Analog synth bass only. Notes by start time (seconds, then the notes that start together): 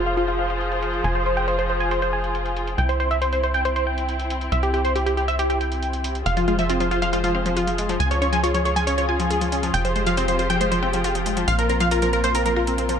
Already playing: F1
1.04 F1
2.78 C2
4.52 C2
6.26 F1
8.00 C#2
9.74 F1
11.48 A#1